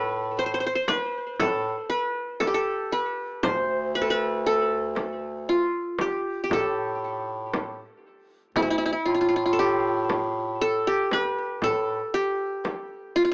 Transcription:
Already playing: A2 A4 B4
0.39 C5
0.46 C5
0.54 C5
0.60 C5
0.66 C5
0.75 C5
0.88 B4, darbuka tek, frame drum
1.39 A2 A4, darbuka dum, frame drum
1.90 B4
2.40 A4, darbuka tek, frame drum
2.47 G4
2.54 A4
2.92 B4
3.43 D2 C5, darbuka dum, frame drum
3.95 B4
4.02 A4
4.10 B4
4.46 A4
4.95 darbuka tek, frame drum
5.49 F4
5.99 G4, darbuka tek, frame drum
6.44 G4
6.50 A2 A4, darbuka dum, frame drum
7.54 darbuka tek, frame drum
8.54 D2 E4, frame drum, darbuka dum
8.62 E4
8.70 E4
8.78 E4
8.86 E4
8.93 E4
9.06 A2 F4
9.15 F4
9.21 F4
9.29 F4
9.36 F4
9.46 F4
9.53 A4
9.59 G4
10.10 darbuka tek, frame drum
10.61 A4
10.87 G4
11.11 B4, darbuka tek, frame drum
11.61 A2 A4, frame drum, darbuka dum
12.14 G4
12.64 darbuka tek, frame drum
13.16 F4
13.25 F4

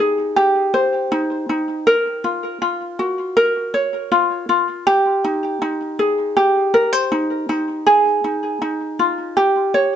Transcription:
Already playing: D#4 G4
0.00 G#4
0.36 G4
0.74 C5
1.12 D#4
1.49 D#4
1.87 A#4
2.24 F4
2.62 F4
2.99 F#4
3.37 A#4
3.74 C#5
4.12 F4
4.49 F4
4.87 G4
5.24 D#4
5.62 D#4
5.99 G#4
6.37 G4
6.74 A#4
6.93 C5
7.12 D#4
7.49 D#4
7.87 G#4
8.24 D#4
8.62 D#4
8.99 F4
9.37 G4
9.74 C#5

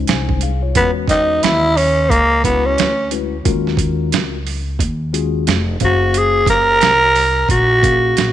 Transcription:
Already playing: G#3 C#4 D#4
0.07 C2 C5 G#5, snare, closed hi-hat
0.29 kick
0.41 G#4 F5, closed hi-hat
0.63 F4 C#5
0.75 E2 E3 G#3 B3 C#4 F#4 B4, kick, closed hi-hat
1.08 D#4, kick, snare, closed hi-hat
1.43 D#2 E4, snare, closed hi-hat
1.77 C#4, open hi-hat
2.10 C#2 A#3, kick, closed hi-hat
2.44 G#3 B3 C#4 E4 F#4 B4, kick, closed hi-hat
2.66 C#4
2.78 D2, snare, closed hi-hat
3.11 G#3 C#4 E4 F#4 B4, closed hi-hat
3.45 D#2 G#3 C#4 F4 F#4 A#4, kick, closed hi-hat
3.67 snare
3.77 kick, closed hi-hat
4.12 C#2, snare, closed hi-hat
4.47 open hi-hat
4.79 D#2, kick, closed hi-hat
5.13 G#3 C#4 F4 F#4 G#4, closed hi-hat
5.47 F1, snare, closed hi-hat
5.80 F#1 A#3 C#4 G#4 C5 F5, kick, closed hi-hat
5.84 F#4
6.14 G#4, closed hi-hat
6.46 A#4, kick, snare, closed hi-hat
6.81 C2, snare, closed hi-hat
7.16 open hi-hat
7.49 A#1 F#4, kick, closed hi-hat
7.82 A#3 C#4 G#4 A#4 F5, kick, closed hi-hat
8.17 A#1, snare, closed hi-hat

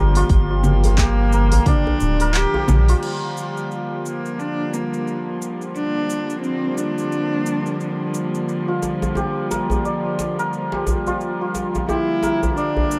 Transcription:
Already playing: G1 D3 F3 G3 A#3 F4 G4 A#4 D5 C6
0.15 F4, open hi-hat, djembe tone, cabasa
0.29 G1, kick, open hi-hat, cabasa
0.50 F4
0.64 A#3, djembe slap, low conga, cabasa
0.84 open hi-hat, djembe tone, cabasa
0.98 G4, kick, clap, open hi-hat, djembe tone
1.32 A#4, djembe slap, cabasa
1.52 open hi-hat, djembe bass, cabasa
1.66 D4 D5, kick, open hi-hat, low conga, cabasa
1.87 djembe bass
2.00 D1, cabasa
2.20 A#4, open hi-hat, cabasa
2.34 G4, clap, open hi-hat, cabasa
2.54 G4, djembe tone
2.68 A#1, djembe slap, low conga, cabasa
2.88 F4, open hi-hat, djembe slap, cabasa
3.02 D3 F3 G3 A#3, crash, cabasa
3.37 cabasa
3.57 cabasa
3.71 cabasa
4.06 A#3, cabasa
4.25 cabasa
4.39 D4, cabasa
4.73 A#3, cabasa
4.93 cabasa
5.07 cabasa
5.42 cabasa
5.61 cabasa
5.75 D4, cabasa
6.10 cabasa
6.30 cabasa
6.42 C4, cabasa
6.77 D4, cabasa
6.98 cabasa
7.12 cabasa
7.46 cabasa
7.66 cabasa
7.80 cabasa
8.14 cabasa
8.35 cabasa
8.49 cabasa
8.68 F4
8.82 djembe slap, cabasa
9.02 djembe tone, cabasa
9.15 G4, djembe tone, cabasa
9.51 A#4, djembe slap, cabasa
9.70 djembe bass, cabasa
9.85 D5, cabasa
10.19 djembe slap, cabasa
10.39 A#4, cabasa
10.53 cabasa
10.72 G4, djembe slap
10.87 djembe tone, djembe bass, cabasa
11.07 F4, djembe tone, cabasa
11.21 cabasa
11.41 F4
11.55 djembe slap, cabasa
11.75 djembe tone, cabasa
11.88 E4 G4, djembe tone, cabasa
12.23 A#4, djembe slap, cabasa
12.43 djembe bass, cabasa
12.57 D4 D5, cabasa
12.77 djembe bass
12.91 cabasa

